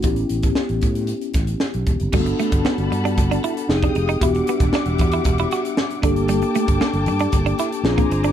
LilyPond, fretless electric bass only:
\new Staff \with { instrumentName = "Fretless electric bass" } { \clef bass \time 4/4 \key g \lydian \tempo 4 = 115 a,,8 a,,8 r16 a,,16 a,8. r16 a,,8 r16 b,,16 e,,16 fis,,16 | g,,8 r16 g,,16 r16 g,,16 g,8 g,,8 r8 f,,8 f,,8 | e,,8 r16 e,,16 r16 e,,16 e,8 e,,8 r4 g,,8~ | g,,8 r16 g,,16 r16 g,,16 g,8 g,,8 r8 bes,,8 g,,8 | }